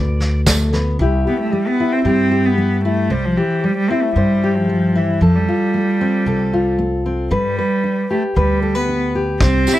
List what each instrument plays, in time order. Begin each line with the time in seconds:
Already playing: upright bass D2, steel-string acoustic guitar D3 B4, pedal steel guitar D5
0.20 snare
0.47 steel-string acoustic guitar A3, kick, snare, tambourine
0.73 steel-string acoustic guitar B3, snare
0.99 upright bass C2, steel-string acoustic guitar C3 G3 E4 G4
1.27 cello B3, steel-string acoustic guitar G4
1.40 cello A3
1.53 steel-string acoustic guitar G3, cello G3
1.67 cello B3
1.80 steel-string acoustic guitar E4
1.92 cello C4
2.05 upright bass G2, steel-string acoustic guitar C3 G4, cello C4
2.31 steel-string acoustic guitar G4
2.46 cello B3
2.58 steel-string acoustic guitar G3
2.84 cello A3, steel-string acoustic guitar E4
3.10 upright bass C2, steel-string acoustic guitar C3 C5, cello G3
3.25 cello F3
3.37 cello E3, steel-string acoustic guitar G4
3.64 steel-string acoustic guitar G3, cello G3
3.77 cello G3
3.90 cello C4, steel-string acoustic guitar E4
4.03 cello A3
4.16 upright bass G2, steel-string acoustic guitar C3 C5, cello G3
4.44 steel-string acoustic guitar G4
4.55 cello F3
4.69 steel-string acoustic guitar G3
4.95 cello E3, steel-string acoustic guitar E4
5.21 upright bass F2, steel-string acoustic guitar F3 A4, cello F3
5.35 cello G3
5.48 steel-string acoustic guitar F4
5.74 steel-string acoustic guitar A3
6.01 steel-string acoustic guitar C4
6.26 upright bass C2, steel-string acoustic guitar C3 A4
6.53 steel-string acoustic guitar F4
6.79 steel-string acoustic guitar A3
7.06 steel-string acoustic guitar C4
7.31 upright bass G2, steel-string acoustic guitar G3 B4, cello G3
7.59 steel-string acoustic guitar B4
7.84 steel-string acoustic guitar D4
8.11 cello A3, steel-string acoustic guitar G4
8.36 upright bass D2, steel-string acoustic guitar D3 B4, cello G3
8.62 steel-string acoustic guitar A4
8.75 cello B3, steel-string acoustic guitar B4
8.88 steel-string acoustic guitar D4
9.15 steel-string acoustic guitar G4
9.40 upright bass C2, steel-string acoustic guitar C3 C5, cello C4, kick, snare, tambourine
9.67 steel-string acoustic guitar G4, snare, tambourine
9.74 cello E4